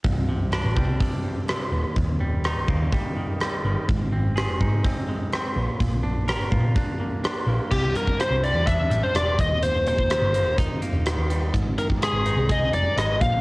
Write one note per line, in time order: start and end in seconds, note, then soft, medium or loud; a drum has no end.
0.04 0.27 C1 medium
0.04 1.25 C2 medium
0.04 kick medium
0.04 open hi-hat soft
0.29 0.66 C1 medium
0.29 0.99 C3 medium
0.52 1.73 D4 medium
0.52 cross-stick medium
0.52 open hi-hat soft
0.64 0.76 A1 medium
0.76 0.98 C2 medium
0.76 1.72 G3 medium
0.76 kick medium
1.00 1.47 C3 medium
1.00 kick loud
1.00 open hi-hat medium
1.24 1.72 G2 soft
1.48 1.73 C3 medium
1.48 cross-stick loud
1.48 open hi-hat soft
1.72 1.83 D#1 medium
1.72 1.96 D#2 medium
1.96 2.18 D#1 medium
1.96 3.17 D#2 medium
1.96 kick medium
1.96 open hi-hat soft
2.20 2.56 D#1 medium
2.20 2.92 G3 medium
2.44 3.64 D#4 medium
2.44 cross-stick loud
2.44 open hi-hat soft
2.56 2.70 C1 medium
2.68 2.90 D#2 medium
2.68 3.88 A#3 medium
2.68 kick medium
2.92 3.39 G3 medium
2.92 kick loud
2.92 open hi-hat soft
3.16 3.63 D#3 medium
3.40 3.88 G3 medium
3.40 cross-stick loud
3.40 open hi-hat soft
3.64 3.75 G1 medium
3.64 3.89 D#3 medium
3.88 4.10 G#1 medium
3.88 5.08 G#2 medium
3.88 kick medium
3.88 open hi-hat soft
4.11 4.48 G#1 medium
4.11 4.84 C4 medium
4.35 5.56 G#4 medium
4.35 cross-stick medium
4.35 open hi-hat soft
4.48 4.62 F1 medium
4.60 4.82 G#2 medium
4.60 5.56 D#4 medium
4.60 kick medium
4.84 5.32 C4 medium
4.84 kick loud
4.84 open hi-hat medium
5.09 5.56 G#3 medium
5.33 5.59 C4 medium
5.33 cross-stick medium
5.33 open hi-hat soft
5.56 5.67 A#1 medium
5.56 5.79 A#2 medium
5.80 6.02 A#1 medium
5.80 7.00 A#2 medium
5.80 kick medium
5.80 open hi-hat soft
6.03 6.40 A#1 medium
6.03 6.75 D4 medium
6.28 7.47 A#4 medium
6.28 cross-stick loud
6.28 open hi-hat soft
6.40 6.54 G1 medium
6.52 6.74 A#2 medium
6.52 7.71 F4 medium
6.52 kick medium
6.76 7.23 D4 medium
6.76 kick loud
6.76 open hi-hat soft
7.00 7.47 A#3 medium
7.24 7.71 D4 medium
7.24 cross-stick loud
7.24 open hi-hat soft
7.47 7.58 A#1 medium
7.47 7.71 A#3 medium
7.71 7.93 C2 medium
7.71 8.91 C2 medium
7.71 7.94 G4 medium
7.71 kick medium
7.71 crash medium
7.96 8.18 G2 medium
7.96 8.20 A#4 medium
7.96 closed hi-hat medium
8.07 kick medium
8.19 9.13 G2 medium
8.19 8.44 C5 medium
8.19 cross-stick medium
8.19 closed hi-hat medium
8.30 8.53 C2 medium
8.43 8.89 G3 medium
8.43 8.66 D5 medium
8.43 closed hi-hat medium
8.55 8.88 E2 medium
8.66 9.38 D4 medium
8.66 9.04 E5 medium
8.66 kick loud
8.66 closed hi-hat medium
8.90 9.01 A1 medium
8.90 9.38 G3 medium
8.90 closed hi-hat medium
9.03 9.15 C5 medium
9.14 9.36 E1 medium
9.14 9.38 G2 medium
9.14 9.40 D5 medium
9.14 cross-stick loud
9.14 closed hi-hat medium
9.39 10.18 D#1 medium
9.39 9.62 D#2 medium
9.39 9.62 D#5 medium
9.39 kick medium
9.39 closed hi-hat medium
9.63 10.82 D#2 medium
9.63 9.87 C5 medium
9.63 closed hi-hat medium
9.87 11.06 A#2 medium
9.87 10.55 C5 medium
9.87 closed hi-hat soft
9.98 kick medium
10.10 11.05 D#3 medium
10.10 cross-stick loud
10.10 closed hi-hat medium
10.22 10.46 G1 medium
10.34 10.81 A#3 medium
10.34 closed hi-hat medium
10.46 10.68 D#1 medium
10.58 11.54 D#4 medium
10.58 kick loud
10.58 closed hi-hat medium
10.82 11.54 A#3 medium
10.82 closed hi-hat medium
10.93 11.15 D#1 medium
11.06 11.54 D#3 medium
11.06 cross-stick loud
11.06 closed hi-hat medium
11.18 11.51 D#2 medium
11.30 11.54 G3 medium
11.30 closed hi-hat medium
11.53 11.75 G#1 loud
11.53 12.74 G#2 medium
11.53 kick medium
11.53 closed hi-hat medium
11.78 12.98 D#3 medium
11.78 11.85 A#4 medium
11.78 closed hi-hat soft
11.90 kick medium
12.01 12.95 G#3 medium
12.01 12.52 G#4 medium
12.01 cross-stick loud
12.01 closed hi-hat medium
12.13 12.35 G#1 medium
12.26 12.71 D#4 medium
12.26 closed hi-hat medium
12.37 12.70 C2 medium
12.49 13.21 G#4 medium
12.49 12.74 D#5 medium
12.49 kick loud
12.49 closed hi-hat medium
12.73 12.84 F1 medium
12.73 13.21 D#4 medium
12.73 12.96 D5 medium
12.73 closed hi-hat medium
12.96 13.19 G#1 medium
12.96 13.21 G#3 medium
12.96 13.21 D#5 medium
12.96 cross-stick loud
12.96 closed hi-hat medium
13.21 13.41 A#1 medium
13.21 13.41 A#2 medium
13.21 13.41 F5 medium
13.21 kick loud
13.21 closed hi-hat medium